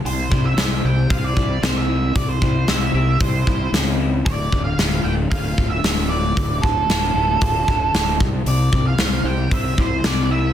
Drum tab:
HH |o-o-o-o-|o-o-o-o-|o-o-o-o-|o-o-o-o-|
SD |--o---o-|--o---o-|--o---o-|--o---o-|
BD |-o--oo--|oo--oo--|oo--oo--|oo--oo-o|

HH |o-o-o-o-|
SD |--o---o-|
BD |-o--oo--|